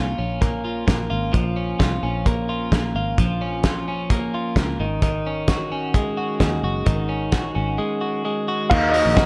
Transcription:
Already playing: C2 A#3 C#4 F4
0.18 A#1 C#4
0.41 A#3, kick, closed hi-hat
0.65 F4
0.87 A#1 A#3, kick, snare, closed hi-hat
1.10 G#1 F4
1.33 A#1 F3, kick, closed hi-hat
1.56 C#4
1.79 C2 F4, kick, snare, closed hi-hat
2.03 A#1 C#4
2.26 A#3, kick, closed hi-hat
2.49 F4
2.72 A#1 A#3, kick, snare, closed hi-hat
2.95 G#1 F4
3.18 A#1 F3, kick, closed hi-hat
3.41 C#4
3.64 F4, kick, snare, closed hi-hat
3.88 C#4
4.10 A#3, kick, closed hi-hat
4.34 F4
4.56 C#2 A#3, kick, snare, closed hi-hat
4.80 G#1 D#3
5.02 D#3, kick, closed hi-hat
5.27 C#4
5.48 F#4, kick, snare, closed hi-hat
5.72 C#4
5.94 G#3, kick, closed hi-hat
6.17 F#4
6.40 D#2 G#3, kick, snare, closed hi-hat
6.63 F#1 F#4
6.86 G#1 D#3, kick, closed hi-hat
7.09 C#4
7.32 A#1 F#4, kick, snare, closed hi-hat
7.55 G#1 C#4
7.78 G#3
8.01 F#4
8.25 G#3
8.48 F#4
8.70 D#2 D#3 D#4 F#4 A#4 D#5 F5, kick, crash
8.91 A#3 D#4 F#4 A#4 D#5, open hi-hat
9.05 A#1
9.14 D#4 F#4 A#4 D#5, kick, snare, closed hi-hat

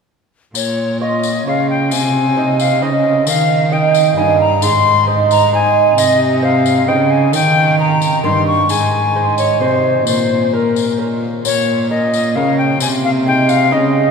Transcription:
0.54 A#2 C#5, tambourine
1.00 C#4 F4 C#5 D#5
1.23 tambourine
1.46 C#3 C#4 F4 C#5 F5
1.70 G5
1.91 C3 G#5, tambourine
2.37 C4 D#4 D#5
2.60 F5, tambourine
2.81 C#3 C4 D#4 D#5
3.27 D#3 F5, tambourine
3.72 A#3 D#4 D#5 G5
3.95 tambourine
4.17 G2 A#3 D#4 D#5 G#5
4.41 A#5
4.62 G#2 C6, tambourine
5.07 C4 D#4 D#5
5.31 A#5, tambourine
5.53 C4 D#4 D#5 G#5
5.97 C3 D#5, tambourine
6.42 C4 D#4 D#5 F5
6.66 tambourine
6.88 C#3 C4 D#4 D#5 G5
7.11 G#5
7.33 D#3 G5, tambourine
7.78 A#3 D#4 D#5 A#5
8.02 tambourine
8.23 G2 A#3 D#4 D#5 C6
8.47 C#6
8.69 G#2 G#5, tambourine
9.15 G#3 D#4 C5
9.38 C#5, tambourine
9.60 C3 G#3 D#4 C5
10.06 A#2 C5, tambourine
10.53 C#4 A#4
10.76 tambourine
10.98 C#4 A#4
11.45 A#2 C#5, tambourine
11.90 C#4 A#4 D#5
12.14 tambourine
12.35 C#3 C#4 A#4 F5
12.58 G5
12.80 C3 G#5, tambourine
13.04 F5
13.26 G#3 D#4 D#5 G5
13.49 F5, tambourine
13.71 C#3 G#3 D#4 D#5

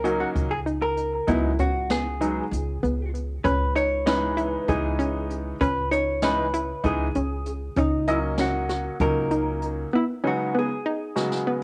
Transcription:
Already playing: C#2 A#4
0.04 F#3 A#3 C#4 D#4 F#4, closed hi-hat
0.20 F#4
0.36 C#2, kick, closed hi-hat
0.51 G#4
0.66 D#4, closed hi-hat
0.82 A#4
0.97 closed hi-hat
1.27 C#2 F#3 G#3 B3 D#4 E4, kick, closed hi-hat
1.59 C#4 F#4, kick, closed hi-hat
1.90 B3 G#4, snare, closed hi-hat
2.21 F#3 G#3 B3 D#4, closed hi-hat
2.51 C#2, closed hi-hat
2.83 C#2 B3, closed hi-hat
3.15 closed hi-hat
3.44 C#2 C#4 B4, kick, closed hi-hat
3.76 D#4 C#5, closed hi-hat
4.06 E3 G#3 B3 C#4 D#4 B4, snare, closed hi-hat
4.37 E4, closed hi-hat
4.68 C#2 E3 G#3 B3 D#4 G#4, kick, closed hi-hat
4.99 C#4, closed hi-hat
5.30 closed hi-hat
5.61 C#2 C#4 B4, kick, closed hi-hat
5.91 D#4 C#5, closed hi-hat
6.22 E3 G#3 B3 C#4 D#4 B4, snare, closed hi-hat
6.54 E4, closed hi-hat
6.84 C#2 E3 G#3 B3 D#4 G#4, kick, closed hi-hat
7.15 C#2 C#4, closed hi-hat
7.46 closed hi-hat
7.76 C#2 C#4 D#4, kick, closed hi-hat
8.07 F#3 A#3 C#4 E4 D#5, closed hi-hat
8.38 C#4 F#4, snare, closed hi-hat
8.69 F#4, snare, closed hi-hat
9.00 C#2 F#3 A#3 C#4 D#4 A#4, kick, closed hi-hat
9.31 D#4, closed hi-hat
9.62 closed hi-hat
9.93 B3 E4
10.24 C#3 F#3 G#3 B3 C#4 D#4 F#4
10.55 B3
10.59 G#4
10.86 D#4
11.16 C#3 F#3 G#3 B3 F#4, snare
11.32 snare
11.47 B3

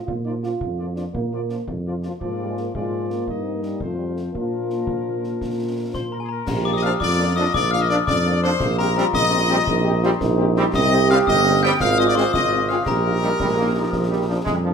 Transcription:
0.06 A#2 F4, concert bass drum
0.25 F3 A#3 D#4 F4 D5
0.43 F3 A#3 F4 D5, snare
0.61 F2, concert bass drum
0.79 F3 A#3 F4 D5
0.96 F3 A#3 D4 F4 D5, snare
1.13 A#2 A#3, concert bass drum
1.32 F3 A#3 F4 D5
1.49 F3 A#3 F4 D5, snare
1.68 F2, concert bass drum
1.86 F3 A#3 F4 D5
2.02 F3 A#3 F4 D5, snare
2.20 G#2 F3 A#3 F4 D5, concert bass drum
2.40 G3
2.49 G#3
2.57 A#3, snare
2.75 G#2 F3 G#3 A#3 F4 D5, concert bass drum
3.10 A#3, snare
3.27 G2 A#3 D#4 D#5, concert bass drum
3.43 C4
3.55 A#3
3.63 G3, snare
3.80 F2 F3 A3 C4 F4 C5, concert bass drum
3.98 G3
4.07 G3
4.15 A3, snare
4.32 F3 A#3 D4 F4, concert bass drum
4.36 A#2 A#4
4.70 snare
4.87 A#2, concert bass drum
5.24 snare
5.41 A#2, concert bass drum, snare
5.93 A#2 C5 C6, concert bass drum, snare
6.11 A#4 A#5
6.20 G#4 G#5
6.29 A#4 A#5
6.47 A#1 G4, concert bass drum, snare, crash
6.65 F3 A#3 D4 D5 D6
6.73 D#5 D#6
6.82 F3 A#3 D4 F5 F6, snare
6.99 F2 F4 D5 D6, concert bass drum, snare
7.18 F3 A#3 D4
7.35 F3 A#3 D4 D#5 D#6
7.39 D4
7.52 A#1 D5 D6, concert bass drum, snare
7.71 F3 A#3 D4 F5 F6
7.79 D#5 D#6
7.88 F3 A#3 D4 D5 D6, snare
8.06 F2 D4 D5 D6, concert bass drum, snare
8.25 F3 A#3 D4
8.42 F3 A#3 D4 C5 C6, snare
8.60 A#1 F4, concert bass drum, snare, crash
8.78 G3 C4 G4 A#4 A#5
8.96 G3 C4 G4 A#4 A#5, snare
9.13 A#1 D#5 D#6, concert bass drum, snare
9.32 G3 C4 G4
9.50 G3 C4 G4
9.67 A#1 D#4, concert bass drum, snare
9.84 G3 C4 G4
10.02 G3 C4 F4 G4, snare
10.21 A#1 D#4, concert bass drum, snare
10.38 G3 C4 G4
10.55 G3 C4 G4, snare
10.72 C2 G4 D#5 D#6, concert bass drum, snare, crash
10.91 G3 C4 G4
11.09 G3 C4 G4 F5 F6, snare
11.27 G1 D#5 D#6, concert bass drum, snare
11.44 G3 C4 G4
11.63 G3 C4 G4 G5 G6
11.80 G#1 F4 F5 F6, concert bass drum, snare
11.98 G#3 C4 F4 D#5 D#6
12.07 D5 D6
12.15 G#3 C4 F4 C5 C6, snare
12.33 G#1 D#5 D#6, concert bass drum, snare
12.52 G#3 C4 F4
12.68 G#3 C4 F4 F5 F6, snare
12.84 A#1 G4 A#4 A#5, concert bass drum, snare, crash
13.07 G3 A#3 D#4
13.22 G3 A#3 D#4, snare
13.40 A#1 G3, concert bass drum, snare
13.49 G#3
13.57 G3 A#3 D#4
13.75 F3 G3 A#3 D#4
13.93 A#1, concert bass drum, snare
14.09 G3
14.13 F3 A#3 D4
14.28 F3 A#3 D4
14.44 F2 G#3, concert bass drum, snare
14.55 G3
14.64 F3 A#3 D4

